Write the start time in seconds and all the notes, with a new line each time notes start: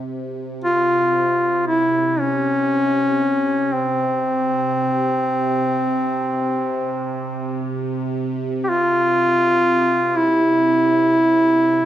0.07 C3
0.64 F4
1.67 E4
2.20 C#4
3.73 C4
8.64 G4
8.69 F4
10.16 E4